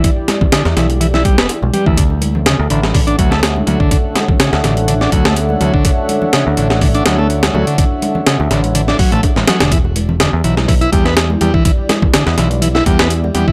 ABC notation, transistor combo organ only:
X:1
M:4/4
L:1/16
Q:"Swing 16ths" 1/4=124
K:D
V:1 name="Transistor combo organ" clef=bass
E, z3 D, z E, z E, E G, B, z2 G, E, | D, z3 C, z D, z D, D F, A, z2 F, D, | D, z3 C, z D, z D, D F, A, z2 F, D, | D, z3 C, z D, z D, D F, A, z2 F, D, |
D, z3 C, z D, z D, D F, A, z2 F, D, | E, z3 D, z E, z E, E G, B, z2 G, E, | E, z3 D, z E, z E, E G, B, z2 G, E, |]